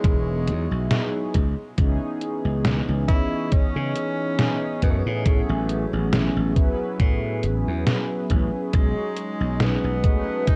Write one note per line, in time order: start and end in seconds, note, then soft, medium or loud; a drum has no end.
0.00 0.90 F#3 medium
0.00 1.35 G#3 medium
0.00 0.91 B3 medium
0.00 0.91 D#4 medium
0.00 0.92 E4 medium
0.00 0.92 G#4 medium
0.00 0.87 C#5 medium
0.04 0.49 E1 medium
0.04 kick loud
0.04 closed hi-hat medium
0.48 0.67 E2 medium
0.48 closed hi-hat medium
0.71 0.88 B1 medium
0.90 1.12 F#3 medium
0.90 1.12 B3 medium
0.90 1.12 D#4 medium
0.90 1.13 E4 medium
0.90 1.13 G#4 medium
0.90 snare loud
0.90 closed hi-hat medium
1.34 1.54 C#2 loud
1.34 kick medium
1.34 closed hi-hat medium
1.76 1.98 C#2 medium
1.76 3.03 E3 medium
1.76 3.03 B3 medium
1.76 3.04 C#4 medium
1.76 3.04 D#4 medium
1.76 3.05 G#4 medium
1.76 kick loud
1.76 closed hi-hat medium
2.21 closed hi-hat medium
2.45 2.80 C#2 medium
2.65 snare loud
2.65 closed hi-hat medium
2.89 3.05 C#2 medium
3.07 4.34 E3 medium
3.07 4.34 B3 medium
3.07 4.34 C#4 medium
3.07 3.54 E4 loud
3.07 4.35 C#5 medium
3.07 4.35 D#5 medium
3.07 kick loud
3.07 closed hi-hat medium
3.52 4.84 C#4 loud
3.52 muted slap bass stroke soft
3.52 kick loud
3.52 closed hi-hat medium
3.76 3.92 C#3 medium
3.95 closed hi-hat medium
4.38 4.60 E3 medium
4.38 4.60 B3 medium
4.38 4.60 C#4 medium
4.38 4.60 D#4 medium
4.38 4.61 G#4 medium
4.38 snare loud
4.38 closed hi-hat medium
4.82 5.02 F#2 medium
4.82 4.91 B3 medium
4.82 kick medium
4.82 closed hi-hat medium
4.90 4.99 A3 medium
4.98 5.27 B3 medium
5.06 5.41 A2 medium
5.24 6.51 F#3 medium
5.24 6.13 A3 medium
5.24 6.51 B3 medium
5.24 6.52 C#4 medium
5.24 6.52 E4 medium
5.24 6.52 G#4 medium
5.24 kick loud
5.24 closed hi-hat medium
5.49 5.85 A1 medium
5.69 closed hi-hat medium
5.93 6.28 A1 medium
6.13 snare loud
6.13 closed hi-hat medium
6.36 6.53 A1 medium
6.55 7.81 F#3 medium
6.55 7.82 B3 medium
6.55 7.82 C#4 medium
6.55 7.83 E4 medium
6.55 7.83 B4 medium
6.55 kick loud
6.55 closed hi-hat medium
7.00 7.45 A2 medium
7.00 kick loud
7.00 closed hi-hat medium
7.43 7.63 A1 medium
7.43 closed hi-hat medium
7.67 7.84 E2 medium
7.87 snare loud
7.87 closed hi-hat medium
8.30 8.50 A1 medium
8.30 kick medium
8.30 closed hi-hat medium
8.72 8.93 B1 medium
8.72 9.99 F#3 medium
8.72 9.99 G#3 medium
8.72 9.62 G#3 medium
8.72 10.00 C#4 medium
8.72 10.00 D#4 medium
8.72 10.00 G#4 medium
8.72 kick loud
8.72 closed hi-hat medium
9.17 closed hi-hat medium
9.41 9.76 B1 medium
9.60 10.49 B3 loud
9.60 snare loud
9.60 closed hi-hat medium
9.84 10.01 B1 medium
10.03 10.56 F#3 medium
10.03 10.56 A3 medium
10.03 10.56 C#4 medium
10.03 10.56 D#4 medium
10.03 10.56 B4 loud
10.03 kick loud
10.03 closed hi-hat medium
10.47 10.56 D#4 loud
10.47 muted slap bass stroke soft
10.47 kick loud
10.47 closed hi-hat medium